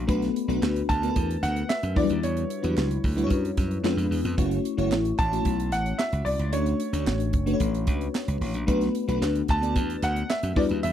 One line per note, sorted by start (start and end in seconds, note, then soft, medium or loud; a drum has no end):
0.00 0.07 A3 medium
0.00 0.10 C#4 medium
0.00 0.07 D4 medium
0.00 0.08 F#4 medium
0.00 0.10 C5 medium
0.07 0.28 B1 loud
0.07 0.38 A3 loud
0.07 0.38 B3 medium
0.07 0.38 D4 medium
0.07 0.39 F#4 medium
0.07 0.39 B4 loud
0.07 kick loud
0.07 closed hi-hat medium
0.22 snare soft
0.22 closed hi-hat medium
0.36 closed hi-hat medium
0.48 0.58 B1 medium
0.48 0.89 A3 medium
0.48 0.89 B3 medium
0.48 0.89 D4 medium
0.48 0.90 F#4 medium
0.48 0.90 B4 loud
0.48 closed hi-hat soft
0.61 0.81 D2 loud
0.61 snare loud
0.61 clap medium
0.76 closed hi-hat medium
0.89 1.09 D2 loud
0.89 1.44 A5 loud
0.89 kick medium
0.89 clap medium
0.89 closed hi-hat medium
1.02 1.83 A3 medium
1.02 1.83 B3 medium
1.02 1.84 D4 medium
1.02 1.84 F#4 medium
1.02 1.09 A#4 medium
1.02 closed hi-hat medium
1.09 1.87 B4 medium
1.16 1.36 E2 medium
1.16 kick medium
1.16 closed hi-hat medium
1.31 closed hi-hat medium
1.43 1.62 D2 medium
1.43 1.70 F#5 loud
1.43 snare soft
1.43 closed hi-hat medium
1.56 closed hi-hat soft
1.69 1.97 E5 medium
1.69 snare loud
1.69 clap medium
1.83 1.96 F#2 medium
1.83 closed hi-hat medium
1.95 2.06 E2 loud
1.95 2.02 F#3 medium
1.95 2.50 D4 medium
1.95 2.50 E4 medium
1.95 2.50 F#4 medium
1.95 2.50 B4 medium
1.95 2.24 D5 loud
1.95 kick loud
1.95 open hi-hat medium
2.02 2.53 G3 medium
2.09 2.20 D#2 loud
2.09 closed hi-hat medium
2.23 2.43 E2 loud
2.23 4.08 C#5 medium
2.23 closed hi-hat medium
2.37 closed hi-hat medium
2.50 closed hi-hat medium
2.62 2.74 E2 medium
2.62 2.69 F#3 medium
2.62 3.04 D4 medium
2.62 3.04 E4 medium
2.62 3.04 F#4 medium
2.62 3.04 B4 medium
2.62 closed hi-hat medium
2.69 3.07 G3 medium
2.77 2.97 C#2 medium
2.77 snare loud
2.77 clap medium
2.91 closed hi-hat medium
3.04 3.24 D2 medium
3.04 kick medium
3.04 open hi-hat medium
3.16 3.84 G3 medium
3.16 3.83 D4 medium
3.16 3.84 E4 medium
3.16 3.84 F#4 medium
3.16 3.24 B4 medium
3.16 closed hi-hat medium
3.24 3.88 C#5 loud
3.30 3.50 F#2 medium
3.30 kick medium
3.30 closed hi-hat medium
3.45 closed hi-hat medium
3.57 3.77 F#2 medium
3.57 kick loud
3.57 snare soft
3.57 closed hi-hat medium
3.71 closed hi-hat soft
3.83 3.94 F2 loud
3.83 4.27 G#3 loud
3.83 4.27 B3 medium
3.83 4.27 D4 medium
3.83 4.27 F4 medium
3.83 4.28 B4 loud
3.83 snare loud
3.83 clap medium
3.97 4.07 F2 medium
3.97 closed hi-hat medium
4.11 4.21 E2 medium
4.11 open hi-hat medium
4.25 4.34 F2 medium
4.25 closed hi-hat medium
4.37 4.58 F#1 loud
4.37 4.68 A3 medium
4.37 4.68 C#4 medium
4.37 4.68 E4 medium
4.37 4.69 F#4 medium
4.37 4.69 C#5 loud
4.37 kick loud
4.37 closed hi-hat medium
4.51 closed hi-hat medium
4.65 closed hi-hat medium
4.77 4.91 F#1 medium
4.77 5.19 A3 medium
4.77 5.19 C#4 medium
4.77 5.19 E4 medium
4.77 5.19 F#4 medium
4.77 5.19 C#5 loud
4.77 closed hi-hat soft
4.91 5.11 A1 medium
4.91 snare loud
4.91 clap medium
5.05 closed hi-hat medium
5.19 5.39 A1 medium
5.19 5.74 A5 loud
5.19 kick loud
5.19 clap medium
5.19 closed hi-hat medium
5.32 6.13 A3 medium
5.32 6.13 C#4 medium
5.32 6.13 E4 medium
5.32 6.14 F#4 medium
5.32 6.14 C#5 medium
5.32 closed hi-hat medium
5.45 5.72 B1 medium
5.45 kick medium
5.45 closed hi-hat loud
5.60 closed hi-hat medium
5.72 5.92 A1 medium
5.72 6.00 F#5 loud
5.72 snare soft
5.72 closed hi-hat medium
5.86 closed hi-hat soft
5.98 6.24 E5 loud
5.98 snare loud
5.98 clap loud
6.13 6.23 C#2 medium
6.13 closed hi-hat medium
6.25 6.36 C2 medium
6.25 6.53 D5 medium
6.25 open hi-hat medium
6.39 6.53 C#2 loud
6.39 closed hi-hat medium
6.52 6.73 D2 loud
6.52 6.83 A3 medium
6.52 6.83 C#4 medium
6.52 6.84 D4 medium
6.52 6.84 F#4 medium
6.52 8.37 C#5 medium
6.52 6.84 C#5 medium
6.52 closed hi-hat medium
6.66 closed hi-hat soft
6.80 closed hi-hat medium
6.93 7.08 D2 medium
6.93 7.34 A3 medium
6.93 7.34 C#4 medium
6.93 7.34 D4 medium
6.93 7.34 F#4 medium
6.93 7.34 C#5 medium
6.93 closed hi-hat medium
7.07 7.34 A1 medium
7.07 snare loud
7.07 clap medium
7.20 closed hi-hat medium
7.33 7.53 F#1 loud
7.33 kick loud
7.33 closed hi-hat medium
7.46 8.28 A3 medium
7.46 8.28 C#4 medium
7.46 8.28 D4 medium
7.46 8.28 F#4 medium
7.46 7.54 B4 medium
7.46 closed hi-hat medium
7.54 8.32 C#5 loud
7.60 7.87 A1 loud
7.60 kick medium
7.60 closed hi-hat medium
7.75 closed hi-hat medium
7.87 8.07 C#2 medium
7.87 kick loud
7.87 closed hi-hat medium
8.01 closed hi-hat soft
8.15 snare loud
8.15 clap medium
8.28 8.38 C#2 medium
8.28 closed hi-hat medium
8.41 8.55 A1 medium
8.41 open hi-hat medium
8.54 8.64 A#1 medium
8.54 closed hi-hat medium
8.67 8.88 B1 loud
8.67 8.98 A3 loud
8.67 8.98 B3 medium
8.67 8.98 D4 medium
8.67 8.98 F#4 medium
8.67 8.99 B4 loud
8.67 kick loud
8.67 closed hi-hat medium
8.81 snare soft
8.81 closed hi-hat soft
8.95 closed hi-hat medium
9.08 9.18 B1 loud
9.08 9.49 A3 medium
9.08 9.49 B3 medium
9.08 9.49 D4 medium
9.08 9.49 F#4 medium
9.08 9.49 B4 loud
9.08 closed hi-hat medium
9.21 9.41 D2 medium
9.21 snare loud
9.21 clap medium
9.35 closed hi-hat medium
9.48 9.76 D2 loud
9.48 10.05 A5 loud
9.48 kick medium
9.48 clap medium
9.48 closed hi-hat medium
9.61 10.43 A3 medium
9.61 10.43 B3 medium
9.61 10.43 D4 medium
9.61 10.43 F#4 medium
9.61 10.44 D5 medium
9.61 closed hi-hat medium
9.76 9.95 E2 medium
9.76 kick medium
9.76 closed hi-hat medium
9.90 closed hi-hat soft
10.02 10.22 D2 medium
10.02 10.31 F#5 loud
10.02 snare soft
10.02 closed hi-hat medium
10.16 closed hi-hat soft
10.30 10.57 E5 medium
10.30 snare loud
10.30 clap medium
10.43 10.53 F#2 medium
10.43 closed hi-hat medium
10.56 10.66 E2 loud
10.56 10.93 G3 medium
10.56 10.93 D4 medium
10.56 10.93 E4 medium
10.56 10.93 F#4 medium
10.56 10.93 B4 loud
10.56 10.63 D5 medium
10.56 kick loud
10.56 open hi-hat medium
10.69 10.80 D#2 medium
10.69 closed hi-hat medium
10.83 10.93 E2 loud
10.83 10.93 E5 medium
10.83 closed hi-hat medium